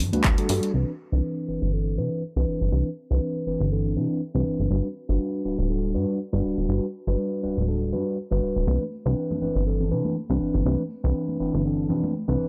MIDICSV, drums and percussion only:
0, 0, Header, 1, 2, 480
1, 0, Start_track
1, 0, Tempo, 495868
1, 715, Time_signature, 4, 2, 24, 8
1, 12085, End_track
2, 0, Start_track
2, 0, Title_t, "Drums"
2, 124, Note_on_c, 9, 63, 100
2, 125, Note_on_c, 9, 54, 82
2, 129, Note_on_c, 9, 42, 40
2, 221, Note_off_c, 9, 54, 0
2, 221, Note_off_c, 9, 63, 0
2, 223, Note_on_c, 9, 54, 64
2, 225, Note_off_c, 9, 42, 0
2, 235, Note_on_c, 9, 36, 102
2, 235, Note_on_c, 9, 42, 87
2, 236, Note_on_c, 9, 39, 119
2, 319, Note_off_c, 9, 54, 0
2, 332, Note_off_c, 9, 36, 0
2, 332, Note_off_c, 9, 42, 0
2, 333, Note_off_c, 9, 39, 0
2, 368, Note_on_c, 9, 42, 57
2, 373, Note_on_c, 9, 54, 43
2, 465, Note_off_c, 9, 42, 0
2, 470, Note_off_c, 9, 54, 0
2, 475, Note_on_c, 9, 46, 91
2, 572, Note_off_c, 9, 46, 0
2, 605, Note_on_c, 9, 54, 95
2, 609, Note_on_c, 9, 42, 37
2, 702, Note_off_c, 9, 54, 0
2, 706, Note_off_c, 9, 42, 0
2, 8399, Note_on_c, 9, 54, 49
2, 8400, Note_on_c, 9, 63, 80
2, 8496, Note_off_c, 9, 54, 0
2, 8497, Note_off_c, 9, 63, 0
2, 8533, Note_on_c, 9, 54, 25
2, 8630, Note_off_c, 9, 54, 0
2, 8631, Note_on_c, 9, 54, 80
2, 8728, Note_off_c, 9, 54, 0
2, 8761, Note_on_c, 9, 54, 30
2, 8857, Note_off_c, 9, 54, 0
2, 8869, Note_on_c, 9, 54, 45
2, 8965, Note_off_c, 9, 54, 0
2, 9010, Note_on_c, 9, 64, 71
2, 9011, Note_on_c, 9, 54, 23
2, 9014, Note_on_c, 9, 63, 60
2, 9106, Note_off_c, 9, 64, 0
2, 9108, Note_off_c, 9, 54, 0
2, 9109, Note_on_c, 9, 54, 72
2, 9111, Note_off_c, 9, 63, 0
2, 9206, Note_off_c, 9, 54, 0
2, 9249, Note_on_c, 9, 54, 34
2, 9346, Note_off_c, 9, 54, 0
2, 9356, Note_on_c, 9, 54, 49
2, 9453, Note_off_c, 9, 54, 0
2, 9491, Note_on_c, 9, 64, 65
2, 9492, Note_on_c, 9, 54, 21
2, 9588, Note_off_c, 9, 64, 0
2, 9589, Note_off_c, 9, 54, 0
2, 9601, Note_on_c, 9, 54, 79
2, 9698, Note_off_c, 9, 54, 0
2, 9727, Note_on_c, 9, 63, 95
2, 9728, Note_on_c, 9, 54, 35
2, 9824, Note_off_c, 9, 63, 0
2, 9825, Note_off_c, 9, 54, 0
2, 9836, Note_on_c, 9, 54, 44
2, 9932, Note_off_c, 9, 54, 0
2, 9968, Note_on_c, 9, 54, 25
2, 10065, Note_off_c, 9, 54, 0
2, 10080, Note_on_c, 9, 54, 88
2, 10177, Note_off_c, 9, 54, 0
2, 10202, Note_on_c, 9, 64, 76
2, 10217, Note_on_c, 9, 54, 35
2, 10299, Note_off_c, 9, 64, 0
2, 10314, Note_off_c, 9, 54, 0
2, 10314, Note_on_c, 9, 63, 80
2, 10316, Note_on_c, 9, 54, 51
2, 10410, Note_off_c, 9, 63, 0
2, 10413, Note_off_c, 9, 54, 0
2, 10452, Note_on_c, 9, 54, 22
2, 10548, Note_off_c, 9, 54, 0
2, 10552, Note_on_c, 9, 54, 92
2, 10648, Note_off_c, 9, 54, 0
2, 10695, Note_on_c, 9, 54, 38
2, 10792, Note_off_c, 9, 54, 0
2, 10795, Note_on_c, 9, 54, 48
2, 10892, Note_off_c, 9, 54, 0
2, 10923, Note_on_c, 9, 63, 61
2, 10928, Note_on_c, 9, 54, 26
2, 11020, Note_off_c, 9, 63, 0
2, 11025, Note_off_c, 9, 54, 0
2, 11037, Note_on_c, 9, 54, 77
2, 11133, Note_off_c, 9, 54, 0
2, 11166, Note_on_c, 9, 54, 36
2, 11263, Note_off_c, 9, 54, 0
2, 11272, Note_on_c, 9, 54, 44
2, 11369, Note_off_c, 9, 54, 0
2, 11415, Note_on_c, 9, 54, 23
2, 11512, Note_off_c, 9, 54, 0
2, 11518, Note_on_c, 9, 64, 75
2, 11522, Note_on_c, 9, 54, 90
2, 11615, Note_off_c, 9, 64, 0
2, 11619, Note_off_c, 9, 54, 0
2, 11645, Note_on_c, 9, 54, 41
2, 11651, Note_on_c, 9, 63, 85
2, 11742, Note_off_c, 9, 54, 0
2, 11747, Note_off_c, 9, 63, 0
2, 11758, Note_on_c, 9, 54, 44
2, 11855, Note_off_c, 9, 54, 0
2, 11893, Note_on_c, 9, 54, 23
2, 11990, Note_off_c, 9, 54, 0
2, 11990, Note_on_c, 9, 54, 90
2, 12085, Note_off_c, 9, 54, 0
2, 12085, End_track
0, 0, End_of_file